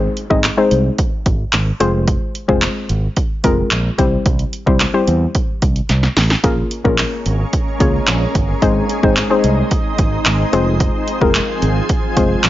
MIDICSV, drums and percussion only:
0, 0, Header, 1, 2, 480
1, 0, Start_track
1, 0, Key_signature, -4, "minor"
1, 0, Tempo, 545455
1, 1827, Time_signature, 4, 2, 24, 8
1, 10996, End_track
2, 0, Start_track
2, 0, Title_t, "Drums"
2, 148, Note_on_c, 9, 42, 68
2, 236, Note_off_c, 9, 42, 0
2, 269, Note_on_c, 9, 36, 93
2, 357, Note_off_c, 9, 36, 0
2, 387, Note_on_c, 9, 39, 102
2, 389, Note_on_c, 9, 42, 90
2, 395, Note_on_c, 9, 38, 81
2, 475, Note_off_c, 9, 39, 0
2, 477, Note_off_c, 9, 42, 0
2, 483, Note_off_c, 9, 38, 0
2, 627, Note_on_c, 9, 42, 85
2, 715, Note_off_c, 9, 42, 0
2, 866, Note_on_c, 9, 42, 103
2, 868, Note_on_c, 9, 36, 99
2, 954, Note_off_c, 9, 42, 0
2, 956, Note_off_c, 9, 36, 0
2, 1108, Note_on_c, 9, 36, 100
2, 1108, Note_on_c, 9, 42, 81
2, 1196, Note_off_c, 9, 36, 0
2, 1196, Note_off_c, 9, 42, 0
2, 1346, Note_on_c, 9, 39, 103
2, 1346, Note_on_c, 9, 42, 94
2, 1354, Note_on_c, 9, 38, 85
2, 1434, Note_off_c, 9, 39, 0
2, 1434, Note_off_c, 9, 42, 0
2, 1442, Note_off_c, 9, 38, 0
2, 1588, Note_on_c, 9, 42, 83
2, 1676, Note_off_c, 9, 42, 0
2, 1827, Note_on_c, 9, 36, 111
2, 1827, Note_on_c, 9, 42, 88
2, 1915, Note_off_c, 9, 36, 0
2, 1915, Note_off_c, 9, 42, 0
2, 2068, Note_on_c, 9, 42, 70
2, 2156, Note_off_c, 9, 42, 0
2, 2189, Note_on_c, 9, 36, 92
2, 2277, Note_off_c, 9, 36, 0
2, 2306, Note_on_c, 9, 39, 101
2, 2308, Note_on_c, 9, 42, 90
2, 2314, Note_on_c, 9, 38, 83
2, 2394, Note_off_c, 9, 39, 0
2, 2396, Note_off_c, 9, 42, 0
2, 2402, Note_off_c, 9, 38, 0
2, 2547, Note_on_c, 9, 42, 83
2, 2635, Note_off_c, 9, 42, 0
2, 2785, Note_on_c, 9, 42, 97
2, 2787, Note_on_c, 9, 36, 100
2, 2873, Note_off_c, 9, 42, 0
2, 2875, Note_off_c, 9, 36, 0
2, 3026, Note_on_c, 9, 42, 82
2, 3028, Note_on_c, 9, 36, 101
2, 3114, Note_off_c, 9, 42, 0
2, 3116, Note_off_c, 9, 36, 0
2, 3265, Note_on_c, 9, 39, 108
2, 3265, Note_on_c, 9, 42, 95
2, 3274, Note_on_c, 9, 38, 86
2, 3353, Note_off_c, 9, 39, 0
2, 3353, Note_off_c, 9, 42, 0
2, 3362, Note_off_c, 9, 38, 0
2, 3508, Note_on_c, 9, 36, 103
2, 3508, Note_on_c, 9, 42, 80
2, 3596, Note_off_c, 9, 36, 0
2, 3596, Note_off_c, 9, 42, 0
2, 3746, Note_on_c, 9, 42, 85
2, 3747, Note_on_c, 9, 36, 111
2, 3834, Note_off_c, 9, 42, 0
2, 3835, Note_off_c, 9, 36, 0
2, 3865, Note_on_c, 9, 42, 48
2, 3953, Note_off_c, 9, 42, 0
2, 3987, Note_on_c, 9, 42, 70
2, 4075, Note_off_c, 9, 42, 0
2, 4109, Note_on_c, 9, 36, 96
2, 4197, Note_off_c, 9, 36, 0
2, 4226, Note_on_c, 9, 39, 103
2, 4228, Note_on_c, 9, 42, 93
2, 4234, Note_on_c, 9, 38, 87
2, 4314, Note_off_c, 9, 39, 0
2, 4316, Note_off_c, 9, 42, 0
2, 4322, Note_off_c, 9, 38, 0
2, 4466, Note_on_c, 9, 42, 80
2, 4554, Note_off_c, 9, 42, 0
2, 4705, Note_on_c, 9, 42, 101
2, 4708, Note_on_c, 9, 36, 99
2, 4793, Note_off_c, 9, 42, 0
2, 4796, Note_off_c, 9, 36, 0
2, 4946, Note_on_c, 9, 42, 80
2, 4948, Note_on_c, 9, 36, 100
2, 5034, Note_off_c, 9, 42, 0
2, 5036, Note_off_c, 9, 36, 0
2, 5068, Note_on_c, 9, 42, 54
2, 5156, Note_off_c, 9, 42, 0
2, 5185, Note_on_c, 9, 42, 93
2, 5186, Note_on_c, 9, 38, 62
2, 5273, Note_off_c, 9, 42, 0
2, 5274, Note_off_c, 9, 38, 0
2, 5307, Note_on_c, 9, 38, 63
2, 5395, Note_off_c, 9, 38, 0
2, 5426, Note_on_c, 9, 38, 95
2, 5428, Note_on_c, 9, 46, 86
2, 5514, Note_off_c, 9, 38, 0
2, 5516, Note_off_c, 9, 46, 0
2, 5546, Note_on_c, 9, 38, 100
2, 5634, Note_off_c, 9, 38, 0
2, 5665, Note_on_c, 9, 42, 86
2, 5666, Note_on_c, 9, 36, 111
2, 5753, Note_off_c, 9, 42, 0
2, 5754, Note_off_c, 9, 36, 0
2, 5906, Note_on_c, 9, 42, 70
2, 5994, Note_off_c, 9, 42, 0
2, 6029, Note_on_c, 9, 36, 92
2, 6117, Note_off_c, 9, 36, 0
2, 6145, Note_on_c, 9, 39, 103
2, 6147, Note_on_c, 9, 42, 92
2, 6153, Note_on_c, 9, 38, 85
2, 6233, Note_off_c, 9, 39, 0
2, 6235, Note_off_c, 9, 42, 0
2, 6241, Note_off_c, 9, 38, 0
2, 6387, Note_on_c, 9, 42, 83
2, 6475, Note_off_c, 9, 42, 0
2, 6626, Note_on_c, 9, 42, 101
2, 6628, Note_on_c, 9, 36, 94
2, 6714, Note_off_c, 9, 42, 0
2, 6716, Note_off_c, 9, 36, 0
2, 6867, Note_on_c, 9, 42, 80
2, 6868, Note_on_c, 9, 36, 103
2, 6955, Note_off_c, 9, 42, 0
2, 6956, Note_off_c, 9, 36, 0
2, 7105, Note_on_c, 9, 39, 111
2, 7105, Note_on_c, 9, 42, 94
2, 7114, Note_on_c, 9, 38, 87
2, 7193, Note_off_c, 9, 39, 0
2, 7193, Note_off_c, 9, 42, 0
2, 7202, Note_off_c, 9, 38, 0
2, 7348, Note_on_c, 9, 36, 100
2, 7349, Note_on_c, 9, 42, 83
2, 7436, Note_off_c, 9, 36, 0
2, 7437, Note_off_c, 9, 42, 0
2, 7587, Note_on_c, 9, 36, 114
2, 7587, Note_on_c, 9, 42, 90
2, 7675, Note_off_c, 9, 36, 0
2, 7675, Note_off_c, 9, 42, 0
2, 7828, Note_on_c, 9, 42, 65
2, 7916, Note_off_c, 9, 42, 0
2, 7949, Note_on_c, 9, 36, 96
2, 8037, Note_off_c, 9, 36, 0
2, 8066, Note_on_c, 9, 39, 102
2, 8068, Note_on_c, 9, 42, 94
2, 8075, Note_on_c, 9, 38, 82
2, 8154, Note_off_c, 9, 39, 0
2, 8156, Note_off_c, 9, 42, 0
2, 8163, Note_off_c, 9, 38, 0
2, 8306, Note_on_c, 9, 42, 82
2, 8394, Note_off_c, 9, 42, 0
2, 8545, Note_on_c, 9, 42, 96
2, 8548, Note_on_c, 9, 36, 102
2, 8633, Note_off_c, 9, 42, 0
2, 8636, Note_off_c, 9, 36, 0
2, 8787, Note_on_c, 9, 42, 81
2, 8788, Note_on_c, 9, 36, 102
2, 8875, Note_off_c, 9, 42, 0
2, 8876, Note_off_c, 9, 36, 0
2, 9025, Note_on_c, 9, 39, 105
2, 9025, Note_on_c, 9, 42, 92
2, 9034, Note_on_c, 9, 38, 83
2, 9113, Note_off_c, 9, 39, 0
2, 9113, Note_off_c, 9, 42, 0
2, 9122, Note_off_c, 9, 38, 0
2, 9267, Note_on_c, 9, 42, 78
2, 9355, Note_off_c, 9, 42, 0
2, 9506, Note_on_c, 9, 42, 86
2, 9507, Note_on_c, 9, 36, 111
2, 9594, Note_off_c, 9, 42, 0
2, 9595, Note_off_c, 9, 36, 0
2, 9747, Note_on_c, 9, 42, 69
2, 9835, Note_off_c, 9, 42, 0
2, 9869, Note_on_c, 9, 36, 97
2, 9957, Note_off_c, 9, 36, 0
2, 9986, Note_on_c, 9, 39, 106
2, 9988, Note_on_c, 9, 42, 94
2, 9995, Note_on_c, 9, 38, 81
2, 10074, Note_off_c, 9, 39, 0
2, 10076, Note_off_c, 9, 42, 0
2, 10083, Note_off_c, 9, 38, 0
2, 10227, Note_on_c, 9, 42, 81
2, 10315, Note_off_c, 9, 42, 0
2, 10465, Note_on_c, 9, 42, 96
2, 10468, Note_on_c, 9, 36, 103
2, 10553, Note_off_c, 9, 42, 0
2, 10556, Note_off_c, 9, 36, 0
2, 10707, Note_on_c, 9, 42, 77
2, 10708, Note_on_c, 9, 36, 98
2, 10795, Note_off_c, 9, 42, 0
2, 10796, Note_off_c, 9, 36, 0
2, 10945, Note_on_c, 9, 39, 106
2, 10946, Note_on_c, 9, 42, 95
2, 10954, Note_on_c, 9, 38, 84
2, 10996, Note_off_c, 9, 38, 0
2, 10996, Note_off_c, 9, 39, 0
2, 10996, Note_off_c, 9, 42, 0
2, 10996, End_track
0, 0, End_of_file